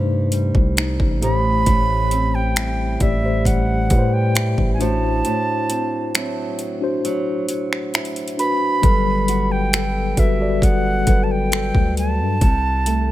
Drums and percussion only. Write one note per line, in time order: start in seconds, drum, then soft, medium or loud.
0.32 closed hi-hat medium
0.55 kick medium
0.77 finger snap loud
0.77 closed hi-hat medium
1.00 kick medium
1.23 closed hi-hat medium
1.66 kick loud
1.66 closed hi-hat medium
2.11 closed hi-hat medium
2.56 finger snap loud
2.56 closed hi-hat medium
3.00 kick medium
3.00 closed hi-hat medium
3.45 kick medium
3.45 closed hi-hat medium
3.90 kick medium
3.90 closed hi-hat medium
4.35 finger snap loud
4.35 closed hi-hat medium
4.58 kick medium
4.81 closed hi-hat medium
5.25 closed hi-hat medium
5.70 closed hi-hat medium
6.15 finger snap loud
6.15 closed hi-hat medium
6.59 closed hi-hat medium
7.05 closed hi-hat medium
7.49 closed hi-hat medium
7.73 finger snap medium
7.94 finger snap loud
7.94 closed hi-hat medium
8.05 closed hi-hat medium
8.16 closed hi-hat soft
8.28 closed hi-hat medium
8.39 closed hi-hat medium
8.83 kick loud
8.83 closed hi-hat medium
9.28 closed hi-hat medium
9.73 finger snap loud
9.73 closed hi-hat medium
10.17 kick medium
10.17 closed hi-hat medium
10.62 kick medium
10.62 closed hi-hat medium
11.07 kick medium
11.07 closed hi-hat medium
11.52 finger snap loud
11.52 closed hi-hat medium
11.75 kick medium
11.97 closed hi-hat medium
12.41 kick loud
12.41 closed hi-hat medium
12.86 closed hi-hat medium